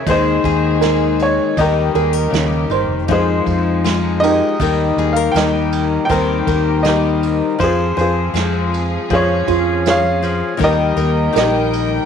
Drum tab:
RD |xxxxxxxx|xxxxxxxx|xxxxxxxx|xxxxxxxx|
SD |--o---o-|--o---o-|--o---o-|--o---o-|
BD |oo--o---|oo--o---|oo--o---|oo--o---|